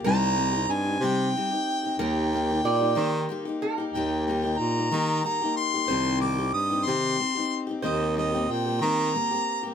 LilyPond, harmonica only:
\new Staff \with { instrumentName = "Harmonica" } { \time 6/8 \key ees \major \tempo 4. = 61 bes''4 aes''8 g''4. | g''2~ g''8 r8 | g''8 g''8 bes''4 bes''8 c'''8~ | c'''8 d'''8 ees'''8 c'''4 r8 |
ees''8 ees''8 g''8 bes''4. | }